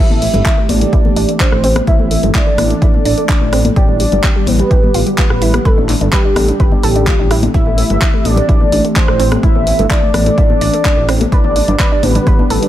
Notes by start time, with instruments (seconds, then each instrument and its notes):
0.00 detuned saw bass A1, analog synth pad E3 A3 C4 G4, soft synth lead E5
0.11 synth pluck A3, high conga
0.22 synth pluck A3, open hi-hat
0.34 detuned saw bass G1, synth pluck A3, closed hi-hat, low conga
0.46 synth pluck E4, kick, clap, closed hi-hat
0.58 synth pluck A3
0.69 detuned saw bass A1, synth pluck A3, soft synth lead D5, open hi-hat, high conga
0.81 synth pluck A3, closed hi-hat, low conga
0.93 detuned saw bass A1, synth pluck E4, kick, closed hi-hat
1.05 synth pluck A3, high conga
1.16 detuned saw bass A1, synth pluck D4, open hi-hat
1.29 synth pluck A3, closed hi-hat
1.40 synth pluck D4, soft synth lead C5, kick, clap, closed hi-hat
1.52 detuned saw bass A1, synth pluck A3, cross-stick
1.64 synth pluck C4, open hi-hat
1.76 synth pluck A3, cross-stick, closed hi-hat, high conga
1.87 detuned saw bass A1, synth pluck E4, analog synth pad A4, soft synth lead E5, kick, closed hi-hat
1.99 synth pluck A3, high conga
2.11 synth pluck A3, open hi-hat
2.23 detuned saw bass G1, synth pluck A3, closed hi-hat, low conga
2.35 synth pluck E4, soft synth lead D5, kick, clap, closed hi-hat
2.47 synth pluck A3
2.58 detuned saw bass A1, synth pluck A3, cross-stick, open hi-hat, high conga
2.70 synth pluck A3, closed hi-hat
2.82 detuned saw bass A1, synth pluck E4, kick, closed hi-hat
2.94 synth pluck A3, high conga
3.05 detuned saw bass A1, synth pluck D4, open hi-hat
3.18 synth pluck A3, closed hi-hat
3.29 synth pluck D4, kick, clap, closed hi-hat
3.41 detuned saw bass A1, synth pluck A3
3.53 synth pluck C4, cross-stick, open hi-hat
3.65 synth pluck A3, closed hi-hat, high conga
3.76 detuned saw bass A1, analog synth pad D3 G3 B3 G4, synth pluck G4, soft synth lead D5, kick, closed hi-hat
3.89 synth pluck G3, high conga
4.00 synth pluck G3, open hi-hat
4.12 detuned saw bass G1, synth pluck G3, closed hi-hat, low conga
4.24 synth pluck G4, kick, clap, closed hi-hat
4.36 synth pluck G3
4.47 detuned saw bass A1, synth pluck G3, soft synth lead B4, open hi-hat, high conga
4.59 synth pluck G3, closed hi-hat, low conga
4.71 detuned saw bass A1, synth pluck G4, kick, closed hi-hat
4.83 synth pluck G3, high conga
4.94 detuned saw bass A1, synth pluck F4, open hi-hat
5.07 synth pluck G3, closed hi-hat
5.18 synth pluck F4, soft synth lead B4, kick, clap, closed hi-hat
5.30 detuned saw bass A1, synth pluck G3, cross-stick
5.42 synth pluck E4, open hi-hat
5.54 synth pluck G3, cross-stick, closed hi-hat, high conga
5.65 detuned saw bass A1, soft synth lead A4, analog synth pad A4, synth pluck B4, kick, closed hi-hat
5.78 synth pluck D4, high conga
5.89 synth pluck D4, clap, open hi-hat
6.01 detuned saw bass G1, synth pluck D4, closed hi-hat, low conga
6.13 soft synth lead G4, synth pluck B4, kick, clap, closed hi-hat
6.25 synth pluck D4
6.36 detuned saw bass A1, synth pluck D4, cross-stick, open hi-hat, high conga
6.48 synth pluck D4, closed hi-hat
6.60 detuned saw bass G1, synth pluck B4, kick, closed hi-hat
6.72 synth pluck D4, high conga
6.83 detuned saw bass A1, synth pluck A4, open hi-hat
6.96 synth pluck D4, closed hi-hat
7.07 synth pluck F4, kick, clap, closed hi-hat
7.19 detuned saw bass A1, synth pluck D4
7.31 synth pluck E4, cross-stick, open hi-hat
7.43 synth pluck D4, closed hi-hat, high conga
7.54 detuned saw bass A1, analog synth pad E3 A3 C4 G4, synth pluck E4, soft synth lead E5, kick, closed hi-hat
7.66 synth pluck A3, high conga
7.78 synth pluck A3, open hi-hat
7.90 detuned saw bass G1, synth pluck A3, closed hi-hat, low conga
8.02 synth pluck E4, kick, clap, closed hi-hat
8.14 synth pluck A3
8.24 detuned saw bass A1, synth pluck A3, soft synth lead D5, open hi-hat, high conga
8.36 synth pluck A3, closed hi-hat, low conga
8.49 detuned saw bass A1, synth pluck E4, kick, closed hi-hat
8.60 synth pluck A3, high conga
8.72 detuned saw bass A1, synth pluck D4, open hi-hat
8.85 synth pluck A3, closed hi-hat
8.96 synth pluck D4, soft synth lead C5, kick, clap, closed hi-hat
9.08 detuned saw bass A1, synth pluck A3, cross-stick
9.20 synth pluck C4, open hi-hat
9.31 synth pluck A3, cross-stick, closed hi-hat, high conga
9.43 detuned saw bass A1, synth pluck E4, analog synth pad A4, soft synth lead E5, kick, closed hi-hat
9.55 synth pluck A3, high conga
9.67 synth pluck A3, open hi-hat
9.79 detuned saw bass G1, synth pluck A3, closed hi-hat, low conga
9.90 synth pluck E4, soft synth lead D5, kick, clap, closed hi-hat
10.03 synth pluck A3
10.14 detuned saw bass A1, synth pluck A3, cross-stick, open hi-hat, high conga
10.26 synth pluck A3, closed hi-hat
10.38 detuned saw bass A1, synth pluck E4, kick, closed hi-hat
10.50 synth pluck A3, high conga
10.61 detuned saw bass A1, synth pluck D4, open hi-hat
10.74 synth pluck A3, closed hi-hat
10.85 synth pluck D4, kick, clap, closed hi-hat
10.97 detuned saw bass A1, synth pluck A3
11.09 synth pluck C4, cross-stick, open hi-hat
11.21 synth pluck A3, closed hi-hat, high conga
11.32 detuned saw bass A1, analog synth pad D3 G3 B3 G4, synth pluck B4, soft synth lead D5, kick, closed hi-hat
11.44 synth pluck D4, high conga
11.56 synth pluck D4, open hi-hat
11.68 detuned saw bass G1, synth pluck D4, closed hi-hat, low conga
11.79 synth pluck B4, kick, clap, closed hi-hat
11.92 synth pluck D4
12.03 detuned saw bass A1, synth pluck D4, soft synth lead B4, open hi-hat, high conga
12.15 synth pluck D4, closed hi-hat, low conga
12.27 detuned saw bass A1, synth pluck B4, kick, closed hi-hat
12.39 synth pluck D4, high conga
12.50 detuned saw bass A1, synth pluck A4, open hi-hat
12.63 synth pluck D4, closed hi-hat